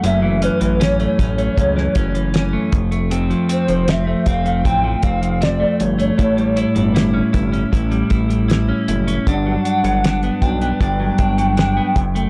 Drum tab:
HH |x-xxxxxxx-xxx-xx|xxxxx-xxx-xxx-xx|xxxxx-xxxxxxx-xx|x-xxxxxxx-xxx-xx|
SD |----o----o--o---|----o-------o---|----o-------o---|----o-------o---|
BD |------o-o-o---o-|------o-o-o-----|o-----o-o-o-----|o-----o-o-o---o-|